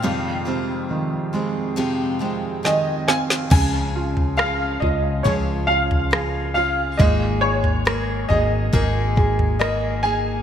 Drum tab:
CC |----------------|x---------------|----------------|
SD |------------o-oo|----r-------r---|----r-------r---|
FT |----------------|o--o--o-o--o----|o--o--o-o--o----|
BD |----------------|o-------o-------|o-------o-o-----|